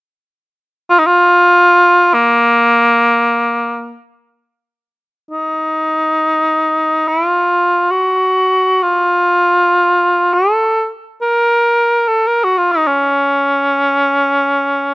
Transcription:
0.90 F4
0.99 D#4
1.06 F4
2.14 A#3
5.31 D#4
7.08 E4
7.27 F4
7.91 F#4
8.83 F4
10.34 A4
11.22 A#4
12.08 A4
12.27 A#4
12.44 F#4
12.58 F4
12.72 D#4
12.87 C#4

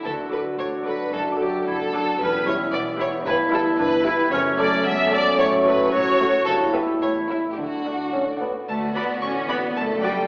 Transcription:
Already playing: D4 A4
0.04 D2 D3 D4 F#4 A4
0.22 D4
0.31 F#3 A4 B4 D6
0.41 A4
0.58 A1 A2 F#4 C#5 D5
0.77 A4
0.86 F#3 A4 B4 D6
0.95 F#4
1.13 F#1 F#2 A4
1.32 D4
1.40 F#3 G4 A4 D6
1.49 A4
1.66 F#1 F#2 E4 A4 D5
1.84 A4
1.93 F#3 D4 A4 D6
2.03 F#4
2.18 E1 E2 B3 C#4 G4 B4
2.39 B3
2.47 G3 E4 C#5 B5
2.56 E5
2.72 B1 B2 B3 B4 D5
2.91 E5
2.99 G3 E4 C#5 B5
3.09 G4
3.26 G1 G2 E4 B4
3.44 B3
3.53 G3 E4 A4 B5
3.62 E5
3.79 G1 G2 D4 B4
3.98 E5
4.05 G3 E4 B5
4.16 G4
4.32 F#1 F#2 A3 C#4 C#5
4.51 A3
4.59 A3 A4 D5 A5
4.68 C#5
4.85 C#2 B3 A4 E5
5.03 C#5
5.12 A3 A4 D5 A5
5.22 A4
5.39 A1 A2 F#3 A3 C#5
5.57 A3
5.66 A3 F#4 B4 A5
5.75 C#5
5.92 A1 A2 F#4 A4 C#5
6.20 A3 F#4 A5
6.28 F#4
6.46 G1 G2 G3 E4 A4
6.64 B3
6.74 B3 G4 B4 E5
6.82 G4 E5
7.00 A1 A2 A3 E4 C#5
7.20 A3
7.29 A3 E4 E5
7.38 E4 E5
7.51 G4
7.57 D2 D3 D4 F#4
7.76 A3
7.86 A3 D4 F#5
7.94 D5
8.12 A1 A2 C#4 A4
8.32 D5
8.41 A3 B3 D4 F#5
8.51 F#4
8.67 D2 D3 A3 F#4 A5
8.87 A3
8.94 B3 F#4 D5 B5
9.04 F#4
9.21 A1 C#4 D5 C#6
9.39 F#4
9.49 B3 F#4 D5 B5
9.57 D4
9.75 F#1 F#2 A3 A4 A5
9.93 A3
10.02 G3 F#4 D5 G5
10.11 F#4

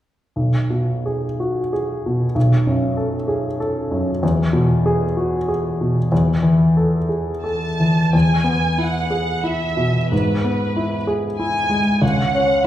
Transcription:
0.36 B1
0.70 B2
1.06 G#4
1.40 F#4
1.73 G#4
2.06 B2
2.35 B1
2.67 F#2
2.97 A4
3.28 G#4
3.60 A4
3.91 F#2
4.23 E2
4.53 B2
4.86 G#4
5.17 F#4
5.48 G#4
5.81 B2
6.12 E2
6.43 E3
6.77 A4
7.09 G#4
7.43 A4 A5
7.80 E3
8.13 E2 G#5
8.44 B3
8.78 E4 F#5
9.11 G#4
9.44 E4 E5
9.77 B2
10.12 G#2 B4
10.44 B3
10.76 E4
11.07 G#4
11.39 E4 G#5
11.70 G#3
12.02 C#2 F#5
12.35 C#4

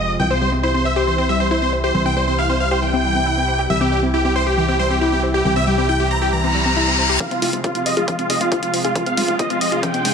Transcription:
Already playing: F1 D#5
0.09 C3 F3 G#3 F4
0.20 C2 C3 E3 G3 E4 G5
0.31 C4 C5
0.41 C3 E3 G3 E4 C5
0.52 C4
0.63 C3 E3 G3 E4 C5
0.74 C3 E3 G3 C4 E4 C5
0.85 C5 E5
0.96 C3 E3 G3 E4 G4 C5
1.07 C3 E3 G3 E4 C5
1.18 C4 C5
1.29 C3 E3 G3 E4 E5
1.40 C4 C5
1.51 C3 E3 G3 E4 C5
1.62 C3 E3 G3 C4 E4 C5
1.73 C5
1.84 C3 E3 G3 E4 G4 C5
1.95 C2 C3 E3 G3 E4 C5
2.06 C4 G5
2.17 C3 E3 G3 E4 C5
2.28 C4 C5
2.38 C3 E3 G3 E4 F5
2.49 C3 E3 G3 C4 E4 C5
2.60 C5 F5
2.71 C3 E3 G3 E4 G4 C5
2.82 C3 E3 G3 E4 G5
2.93 C4
3.04 C3 E3 G3 E4
3.15 C4
3.26 C3 E3 G3 E4
3.37 C3 E3 G3 C4 E4
3.48 C5
3.59 C3 E3 G3 E4 G4
3.70 C2 C3 E3 G3 E4 E5
3.81 C4 G4
3.92 C3 E3 G3 E4 G4
4.03 C4
4.14 C3 E3 G3 E4 G4
4.25 C3 E3 G3 C4 E4 G4
4.36 C5
4.47 C3 E3 G3 E4 G4
4.57 C3 E3 G3 E4 G4
4.68 C4 G4
4.79 C3 E3 G3 E4 C5
4.90 C4 G4
5.01 C3 E3 G3 E4 G4
5.12 C3 E3 G3 C4 E4 G4
5.23 C5
5.34 C3 E3 G3 E4 G4
5.45 C2 C3 E3 G3 E4 G4
5.56 C4 E5
5.67 C3 E3 G3 E4 G4
5.78 C4 G4
5.89 C3 E3 G3 E4 G5
6.00 C3 E3 G3 C4 E4 G4
6.11 C5 A#5
6.22 C3 E3 G3 E4 G4
6.33 C3 E3 G3 E4 A#5, reverse cymbal
6.44 C4
6.55 C3 E3 G3 E4
6.66 C4
6.77 C3 E3 G3 E4
6.87 C3 E3 G3 C4 E4
6.98 C5
7.09 C3 E3 G3 E4 G4
7.20 C3 F3 G#3 F4 F5, kick, closed hi-hat, riser
7.31 C4 F4, closed hi-hat
7.42 F1 C3 F3 G#3 F4, open hi-hat
7.53 F1 C4, closed hi-hat
7.64 C3 F3 G#3 F4, kick, closed hi-hat
7.75 F1 C3 F3 G#3 C4 F4, closed hi-hat
7.86 C5 D#5, open hi-hat
7.97 F1 C3 F3 G#3 F4 G#4, closed hi-hat
8.08 C3 F3 G#3 F4, kick, closed hi-hat
8.19 C4 F4, closed hi-hat
8.30 F1 C3 F3 G#3 F4 D#5, open hi-hat
8.41 F1 C4 F4, closed hi-hat
8.52 C3 F3 G#3 F4, kick, closed hi-hat
8.63 F1 C3 F3 G#3 C4 F4, closed hi-hat
8.74 C5, open hi-hat
8.84 F1 C3 F3 G#3 F4 G#4, closed hi-hat
8.95 C3 F3 G#3 F4, kick, closed hi-hat
9.06 C4 F5, closed hi-hat
9.17 F1 C3 F3 G#3 F4, open hi-hat
9.28 F1 C4 F4, closed hi-hat
9.39 C3 F3 G#3 F4 D#5, kick, closed hi-hat
9.50 F1 C3 F3 G#3 C4 F4, closed hi-hat
9.61 C5 D#5, open hi-hat
9.72 F1 C3 F3 G#3 F4 G#4, closed hi-hat
9.83 C3 F3 G#3 F4 G5, kick, closed hi-hat
9.94 C4, closed hi-hat
10.05 F1 C3 F3 G#3 F4, open hi-hat

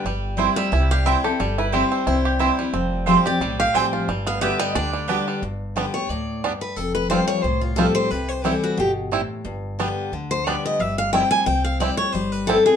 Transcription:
Already playing: G4
0.05 G1 G3
0.37 G3 C4 E4 C5 G5
0.56 G3 E5
0.72 C2 C4 E4
0.91 G4 F5
1.05 G3 C4 E4 C5 G5
1.24 C4 E4 G4 A4
1.40 G1 G3
1.58 E4 B4
1.72 G3 C4 E4 C5 G5
1.92 C4
2.07 C2 C4 E4
2.25 G4
2.39 G3 C4 E4 C5 G5
2.59 G3 C4 E4
2.73 F1 F2 C4
3.06 F3 G3 A3 C4 F4 G4 C5 G5
3.25 C4 G4 D5
3.40 B1 A2 G3
3.60 G4 F5
3.74 A1 F3 G3 A3 C4 F4 G4 C5 G5
3.93 F4
4.08 G1 G2 G3
4.27 B3 F5
4.41 D3 G3 B3 G4 D5 E5 G5
4.59 G3 D#5
4.75 D2 D3 D4 D5
4.93 G3
5.08 D3 G3 B3 D4 G4 D5 G5
5.28 G3
5.42 G1 G2
5.76 D3 G3 B3 D4 G4
5.94 B3 G4 C#5
6.09 D2 A2 D5
6.44 G2 G3 B3 D4
6.61 B4
6.76 F1 F2 A4
6.95 B4
7.10 F3 G3 C4 F4 G4 C5
7.28 C#5
7.43 C2 A2 C5
7.61 F4
7.76 F3 G3 C4 F4 G4 A4
7.95 C5
8.11 C2 C3 B4
8.29 C5
8.44 E3 G3 C4 E4 A4
8.64 F#4
8.78 G1 B2 G4
9.11 A2 G3 C4 E4
9.45 G1 G2
9.79 D3 G3 B3 D4 G4
10.12 D2 D3
10.31 C5
10.46 D3 G3 B3 D4 G4 D5
10.65 D#5
10.80 G1 G3 E5
10.98 F5
11.13 G3 C4 E4 G5
11.31 G#5
11.46 C2 C4 G5
11.64 F5
11.80 G3 C4 E4 D5
11.97 C#5
12.12 G1 G3 C5
12.32 B4
12.47 G3 C4 E4 A4
12.66 C4 E4 G#4

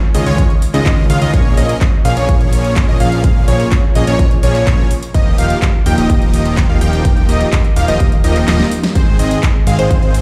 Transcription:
0.15 C#2 D#3 G#3 C#4 F4 D#5, open hi-hat
0.26 C#2 D#3 G#3 C#4 F4 C#5, closed hi-hat
0.38 kick, closed hi-hat
0.50 closed hi-hat
0.62 open hi-hat
0.74 C#2 D#3 G#3 C#4 F4 D#5, clap, closed hi-hat
0.86 kick, clap, closed hi-hat
1.10 C#2 D#3 G#3 C#4 F4 F5, open hi-hat
1.22 C#2 D#3 G#3 C#4 F4 D#5, closed hi-hat
1.34 A#1 F3 A#3 C#4 G#4 C#5, kick, closed hi-hat
1.57 A#1 F3 A#3 C#4 G#4 D#5, open hi-hat
1.69 closed hi-hat
1.81 kick, clap, closed hi-hat
2.05 A#1 F3 A#3 C#4 G#4 F5, open hi-hat
2.17 A#1 F3 A#3 C#4 G#4 C#5, closed hi-hat
2.29 kick, closed hi-hat
2.41 closed hi-hat
2.53 open hi-hat
2.64 closed hi-hat
2.76 kick, clap, closed hi-hat
2.88 A#1 F3 A#3 C#4 G#4 D#5
3.00 A#1 F3 A#3 C#4 G#4 F5, open hi-hat
3.12 closed hi-hat
3.24 kick, closed hi-hat
3.48 A#1 F3 A#3 C#4 G#4 C#5, open hi-hat
3.60 closed hi-hat
3.72 kick, clap, closed hi-hat
3.95 A#1 F3 A#3 C#4 G#4 D#5, open hi-hat
4.07 A#1 F3 A#3 C#4 G#4 C#5, closed hi-hat
4.19 kick, closed hi-hat
4.31 closed hi-hat
4.43 A#1 F3 A#3 C#4 G#4 C#5, open hi-hat
4.55 clap, closed hi-hat
4.67 A#1 F3 A#3 C#4 G#4 C#5, kick, clap, closed hi-hat
4.91 open hi-hat
5.03 closed hi-hat
5.14 D#1 F3 A#3 D#4 G4 D#5, kick, closed hi-hat
5.38 D#1 F3 A#3 D#4 G4 F5, open hi-hat
5.50 closed hi-hat
5.62 kick, clap, closed hi-hat
5.86 D#1 F3 A#3 D#4 G4 G5, open hi-hat
5.98 D#1 F3 A#3 D#4 G4 D#5, closed hi-hat
6.10 kick, closed hi-hat
6.22 closed hi-hat
6.34 open hi-hat
6.45 closed hi-hat
6.57 kick, clap, closed hi-hat
6.69 D#1 F3 A#3 D#4 G4 F5
6.81 D#1 F3 A#3 D#4 G4 G5, open hi-hat
6.93 closed hi-hat
7.05 kick, closed hi-hat
7.17 closed hi-hat
7.29 D#1 F3 A#3 D#4 G4 D#5, open hi-hat
7.41 closed hi-hat
7.53 kick, clap, closed hi-hat
7.64 closed hi-hat
7.76 D#1 F3 A#3 D#4 G4 F5, open hi-hat
7.88 D#1 F3 A#3 D#4 G4 D#5, closed hi-hat
8.00 kick, closed hi-hat
8.12 closed hi-hat
8.24 D#1 F3 A#3 D#4 G4 D#5, open hi-hat
8.36 clap, closed hi-hat
8.48 D#1 F3 A#3 D#4 G4 D#5, snare, clap, closed hi-hat
8.60 snare, closed hi-hat
8.72 open hi-hat
8.84 snare, closed hi-hat
8.95 G#1 D#3 G#3 C4 G#4 C5, kick, closed hi-hat
9.19 G#1 D#3 G#3 C4 G#4 D#5, open hi-hat
9.31 closed hi-hat
9.43 kick, clap, closed hi-hat
9.67 G#1 D#3 G#3 C4 G#4 F5, open hi-hat
9.79 G#1 D#3 G#3 C4 G#4 C5, closed hi-hat
9.91 kick, closed hi-hat
10.03 closed hi-hat
10.14 open hi-hat

